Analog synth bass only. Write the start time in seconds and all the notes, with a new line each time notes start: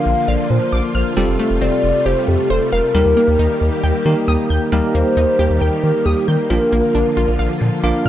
0.06 A#1
0.28 A#1
0.50 A#2
0.73 A#1
0.95 A#1
1.17 F1
1.28 F1
1.50 F1
1.61 F1
1.84 F1
2.06 F1
2.28 F2
2.50 F1
2.73 F1
2.95 D#2
3.06 D#2
3.28 D#2
3.39 D#2
3.61 D#2
3.83 D#2
4.06 D#3
4.28 D#2
4.50 D#2
4.72 D#2
4.95 D#2
5.17 D#2
5.39 D#2
5.50 D#2
5.61 D#2
5.84 D#3
6.06 D#2
6.28 D#3
6.50 A#1
6.72 A#1
6.95 A#1
7.17 A#1
7.28 A#1
7.39 A#1
7.61 A#2
7.83 A#1
8.05 A#2